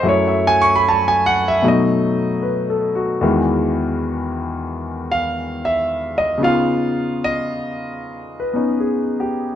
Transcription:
0.03 1.63 F#2 medium
0.03 1.62 F#3 medium
0.03 1.62 A3 medium
0.03 1.63 E4 medium
0.09 0.33 C#5 medium
0.28 0.56 E5 medium
0.47 0.51 G#5 loud
0.62 0.77 C#6 loud
0.76 0.83 B5 medium
0.88 1.12 A5 medium
1.08 1.36 G#5 medium
1.26 1.44 F#5 loud
1.48 1.61 E5 medium
1.62 3.22 B2 medium
1.62 3.22 F#3 soft
1.62 3.23 A3 medium
1.62 3.23 D#4 medium
1.68 4.00 D#5 medium
2.43 2.93 B4 soft
2.70 3.11 A4 medium
2.95 3.37 F#4 medium
3.21 6.40 E2 medium
3.21 6.41 D#3 medium
3.21 6.41 E3 medium
3.21 6.41 G#3 medium
5.12 5.59 F5 medium
5.65 6.13 E5 medium
6.18 6.42 D#5 medium
6.38 9.55 C#3 medium
6.38 8.52 B3 soft
6.38 8.54 D#4 soft
6.43 9.55 F4 medium
6.43 7.18 F5 medium
7.24 7.56 D#5 medium
8.40 8.96 B4 soft
8.53 9.55 B3 soft
8.53 9.55 C#4 soft
8.53 9.55 D#4 soft
8.80 9.43 G#4 soft
9.20 9.55 G4 medium

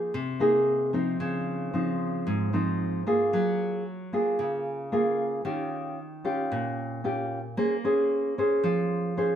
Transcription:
0.00 0.11 F3 medium
0.00 0.14 A#3 soft
0.00 0.14 D#4 soft
0.00 0.14 G#4 medium
0.14 1.18 C3 medium
0.40 0.89 A#3 medium
0.40 0.89 D#4 medium
0.40 0.90 G#4 medium
0.93 1.69 F3 medium
0.93 1.69 C4 medium
0.93 1.69 D#4 medium
1.20 2.24 C#3 medium
1.74 2.49 F3 medium
1.74 2.49 C4 medium
1.74 2.49 D#4 medium
2.27 3.30 G#2 medium
2.53 3.02 F3 medium
2.53 3.02 C4 medium
2.53 3.02 D#4 medium
3.06 3.82 A#3 medium
3.06 3.82 F4 medium
3.06 3.82 G#4 medium
3.33 4.36 F#3 medium
4.13 4.88 A#3 medium
4.13 4.88 F4 medium
4.13 4.88 G#4 medium
4.39 5.42 C#3 medium
4.92 5.41 A#3 medium
4.92 5.41 F4 medium
4.92 5.41 G#4 medium
5.45 6.49 D#3 medium
5.45 5.98 C#4 soft
5.45 5.98 F4 soft
5.45 5.98 G4 medium
6.25 7.00 C#4 medium
6.25 7.00 F4 medium
6.25 7.00 G4 medium
6.52 7.55 A#2 medium
7.04 7.38 C#4 medium
7.04 7.39 F4 medium
7.04 7.39 G4 medium
7.57 8.61 A#3 medium
7.57 7.73 C#4 soft
7.57 7.73 G#4 soft
7.57 7.74 C5 medium
7.84 8.33 C#4 medium
7.84 8.33 G#4 medium
7.84 8.34 C5 medium
8.38 9.13 C#4 medium
8.38 9.13 G#4 medium
8.38 9.14 C5 medium
8.64 9.36 F3 medium
9.17 9.36 C#4 medium
9.17 9.36 G#4 soft
9.17 9.36 C5 medium

